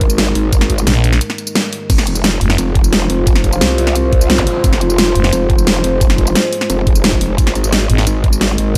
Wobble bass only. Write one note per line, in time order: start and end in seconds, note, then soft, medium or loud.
0.00 0.34 G#1 loud
0.35 0.85 G#1 loud
1.90 2.40 F1 loud
2.58 3.08 F1 loud
3.10 3.60 F1 loud
3.61 4.45 C2 loud
4.64 5.14 F1 loud
5.33 5.83 F1 loud
5.84 6.34 F1 loud
6.70 7.20 F1 loud
7.21 7.37 F1 loud
7.38 7.88 G#1 loud
8.07 8.57 G#1 loud
8.58 8.78 G#1 loud